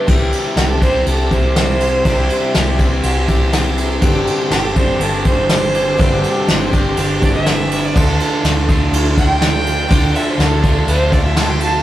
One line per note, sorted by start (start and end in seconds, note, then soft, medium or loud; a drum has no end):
0.07 0.31 C2 loud
0.07 0.57 C3 medium
0.07 0.56 G3 medium
0.07 0.79 C4 medium
0.07 0.57 D4 medium
0.07 0.57 E4 medium
0.07 0.59 G4 medium
0.07 7.90 C5 medium
0.07 3.98 E5 medium
0.07 2.03 D6 medium
0.07 kick loud
0.07 crash medium
0.32 ride medium
0.56 1.02 C2 medium
0.56 0.81 G3 medium
0.56 0.82 D4 medium
0.56 0.82 E4 medium
0.56 0.69 G4 medium
0.56 0.81 G4 medium
0.56 snare loud
0.56 ride medium
0.69 0.81 A4 medium
0.79 2.03 C3 medium
0.79 2.05 G3 medium
0.79 2.05 C4 medium
0.79 2.02 E4 medium
0.79 1.06 G4 medium
0.79 1.06 C5 medium
0.79 kick medium
0.79 ride medium
0.83 1.06 D4 soft
0.83 1.07 E4 medium
1.06 2.01 C2 medium
1.06 1.31 G3 medium
1.06 1.31 D4 medium
1.06 1.31 E4 medium
1.06 1.30 G4 medium
1.06 1.34 A4 medium
1.06 ride medium
1.31 1.56 D4 soft
1.31 1.56 E4 medium
1.31 1.56 G4 medium
1.31 2.76 C5 medium
1.31 kick medium
1.31 ride medium
1.56 2.05 G3 medium
1.56 2.06 D4 medium
1.56 2.05 E4 medium
1.56 2.07 G4 medium
1.56 snare loud
1.56 ride medium
1.80 ride medium
2.04 2.28 C2 loud
2.04 2.54 C3 medium
2.04 2.54 G3 medium
2.04 2.79 C4 loud
2.04 2.55 D4 medium
2.04 2.55 E4 medium
2.04 2.18 E4 medium
2.04 2.57 G4 medium
2.04 4.00 C6 medium
2.04 kick medium
2.04 ride medium
2.19 2.30 G4 medium
2.30 2.54 E4 medium
2.30 ride medium
2.54 3.00 C2 medium
2.54 2.79 G3 medium
2.54 2.79 D4 medium
2.54 2.79 E4 medium
2.54 2.77 G4 medium
2.54 2.80 G4 medium
2.54 snare medium
2.54 ride medium
2.78 4.01 C3 medium
2.78 4.01 G3 medium
2.78 4.01 C4 medium
2.78 3.02 D4 soft
2.78 3.03 E4 medium
2.78 3.03 G4 medium
2.78 kick medium
2.78 ride medium
3.02 3.98 C2 medium
3.02 3.28 G3 medium
3.02 3.28 D4 medium
3.02 3.27 E4 medium
3.02 3.25 G4 medium
3.02 ride medium
3.26 3.51 D4 soft
3.26 3.51 E4 medium
3.26 3.52 G4 medium
3.26 kick medium
3.26 ride medium
3.51 4.02 G3 medium
3.51 4.02 D4 medium
3.51 4.02 E4 medium
3.51 4.03 G4 medium
3.51 snare loud
3.51 ride medium
3.78 ride medium
4.02 4.25 G1 loud
4.02 4.51 G2 medium
4.02 4.51 D3 medium
4.02 4.50 G3 loud
4.02 4.51 C4 medium
4.02 4.52 D4 loud
4.02 4.52 G4 medium
4.02 5.98 G5 medium
4.02 7.92 D6 medium
4.02 kick loud
4.02 ride medium
4.27 ride medium
4.50 4.96 G1 medium
4.50 4.76 G3 medium
4.50 4.76 C4 medium
4.50 4.75 D4 medium
4.50 4.66 G4 medium
4.50 4.74 G4 medium
4.50 snare medium
4.50 ride medium
4.64 4.75 A4 medium
4.75 5.97 G2 medium
4.75 5.98 D3 medium
4.75 4.99 G3 soft
4.75 5.00 C4 soft
4.75 5.00 D4 medium
4.75 5.00 G4 medium
4.75 5.03 C5 medium
4.75 kick medium
4.75 ride medium
4.99 5.94 G1 medium
4.99 5.25 G3 medium
4.99 5.25 C4 medium
4.99 5.24 D4 medium
4.99 5.22 G4 medium
4.99 5.25 A4 medium
4.99 ride medium
5.24 5.47 G3 soft
5.24 5.48 C4 soft
5.24 5.50 D4 soft
5.24 5.49 G4 medium
5.24 6.69 C5 medium
5.24 kick medium
5.24 ride medium
5.49 5.97 G3 medium
5.49 5.97 C4 medium
5.49 5.98 D4 medium
5.49 5.98 G4 medium
5.49 snare loud
5.49 ride medium
5.74 ride medium
5.97 6.22 G1 loud
5.97 6.47 G2 medium
5.97 6.47 D3 medium
5.97 6.46 G3 medium
5.97 6.46 C4 loud
5.97 6.48 D4 medium
5.97 6.48 G4 loud
5.97 7.93 A5 medium
5.97 kick loud
5.97 ride medium
6.03 6.13 E4 medium
6.14 6.36 G4 medium
6.23 ride medium
6.37 6.48 A4 medium
6.47 6.93 G1 medium
6.47 6.72 G3 medium
6.47 6.72 C4 medium
6.47 6.71 D4 medium
6.47 6.70 G4 medium
6.47 snare medium
6.47 ride medium
6.52 6.73 C5 medium
6.71 7.94 G2 medium
6.71 7.94 D3 medium
6.71 6.95 G3 medium
6.71 6.96 C4 medium
6.71 6.97 D4 medium
6.71 6.96 G4 medium
6.71 7.09 C5 medium
6.71 kick medium
6.71 ride medium
6.96 7.91 G1 medium
6.96 7.21 G3 medium
6.96 7.20 C4 medium
6.96 7.19 D4 medium
6.96 7.18 G4 medium
6.96 ride medium
7.19 7.43 G3 soft
7.19 7.44 C4 soft
7.19 7.45 D4 soft
7.19 7.45 G4 medium
7.19 7.34 D5 medium
7.19 kick medium
7.19 ride medium
7.35 7.86 E5 medium
7.45 7.93 G3 medium
7.45 7.94 C4 medium
7.45 7.94 D4 medium
7.45 7.95 G4 medium
7.45 snare loud
7.45 ride medium
7.71 ride medium
7.84 7.98 D5 medium
7.93 8.18 D2 loud
7.93 8.48 D3 medium
7.93 8.41 F3 medium
7.93 8.70 A3 medium
7.93 8.43 D4 medium
7.93 8.68 F4 loud
7.93 8.44 A4 medium
7.93 8.19 A4 medium
7.93 11.82 D5 medium
7.93 11.81 F5 medium
7.93 11.82 E6 medium
7.93 kick loud
7.93 ride medium
8.20 8.67 A4 medium
8.20 ride medium
8.42 8.88 D2 medium
8.42 8.67 F3 medium
8.42 8.68 D4 medium
8.42 8.67 E4 medium
8.42 8.66 A4 medium
8.42 snare loud
8.42 ride medium
8.67 9.88 D3 medium
8.67 9.88 A3 medium
8.67 8.90 D4 soft
8.67 8.92 E4 soft
8.67 9.89 F4 medium
8.67 8.92 A4 soft
8.67 kick medium
8.67 ride medium
8.91 9.86 D2 medium
8.91 9.16 F3 medium
8.91 9.16 D4 medium
8.91 9.17 E4 medium
8.91 9.16 A4 medium
8.91 ride medium
9.17 9.40 D4 soft
9.17 9.42 E4 soft
9.17 9.41 A4 soft
9.17 10.18 G5 loud
9.17 kick medium
9.17 ride medium
9.40 9.87 F3 medium
9.40 9.89 D4 medium
9.40 9.89 A4 medium
9.40 snare loud
9.40 ride medium
9.66 ride medium
9.88 10.13 D2 loud
9.88 10.38 D3 medium
9.88 10.35 F3 medium
9.88 10.61 A3 medium
9.88 10.37 D4 loud
9.88 10.61 F4 loud
9.88 10.38 A4 loud
9.88 kick loud
9.88 ride medium
10.15 10.31 E5 medium
10.15 ride medium
10.30 10.43 C5 medium
10.37 10.83 D2 medium
10.37 10.62 F3 medium
10.37 10.62 D4 medium
10.37 10.61 E4 medium
10.37 10.60 A4 medium
10.37 snare medium
10.37 ride medium
10.41 10.64 A4 loud
10.61 11.83 D3 medium
10.61 11.83 A3 medium
10.61 10.86 D4 soft
10.61 10.87 E4 soft
10.61 11.83 F4 medium
10.61 10.86 A4 medium
10.61 kick medium
10.61 ride medium
10.87 11.81 D2 medium
10.87 11.11 F3 medium
10.87 11.12 D4 medium
10.87 11.11 E4 medium
10.87 11.09 A4 medium
10.87 11.14 C5 medium
10.87 ride medium
11.10 11.35 D4 soft
11.10 11.36 E4 soft
11.10 11.35 A4 medium
11.10 11.24 D5 medium
11.10 kick medium
11.10 ride medium
11.24 11.39 E5 medium
11.35 11.83 F3 soft
11.35 11.83 D4 medium
11.35 11.83 A4 medium
11.35 11.50 A5 medium
11.35 snare loud
11.35 ride medium
11.49 11.60 G5 medium
11.60 11.83 A5 medium
11.60 ride medium